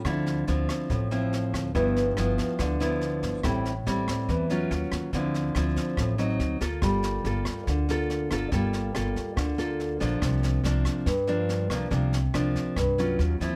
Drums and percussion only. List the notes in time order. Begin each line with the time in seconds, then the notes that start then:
0.05 kick, cross-stick, snare
0.26 snare
0.47 snare
0.69 kick, cross-stick, snare
0.90 kick, snare
1.11 snare
1.33 snare
1.54 kick, cross-stick, snare
1.75 kick, snare
1.96 snare
2.17 cross-stick, snare
2.38 kick, snare
2.59 kick, cross-stick, snare
2.80 snare
3.01 snare
3.23 kick, snare
3.43 kick, cross-stick, snare
3.65 snare
3.87 snare
4.08 kick, cross-stick, snare
4.29 kick, snare
4.50 snare
4.71 snare
4.92 kick, cross-stick, snare
5.13 kick, snare
5.34 snare
5.55 cross-stick, snare
5.76 kick, snare
5.97 kick, cross-stick, snare
6.18 snare
6.40 snare
6.61 kick, snare
6.82 kick, cross-stick, snare
7.03 snare
7.25 snare
7.45 kick, cross-stick, snare
7.67 kick, snare
7.89 snare
8.10 snare
8.31 kick, cross-stick, snare
8.52 kick, snare
8.73 snare
8.95 cross-stick, snare
9.16 kick, snare
9.37 kick, cross-stick, snare
9.58 snare
9.80 snare
10.00 kick, snare
10.22 kick, cross-stick, snare
10.43 snare
10.64 snare
10.85 kick, cross-stick, snare
11.06 kick, snare
11.27 snare
11.49 snare
11.70 kick, cross-stick, snare
11.91 kick, snare
12.13 snare
12.34 cross-stick, snare
12.55 kick, snare
12.76 kick, cross-stick, snare
12.98 snare
13.19 snare
13.40 kick, snare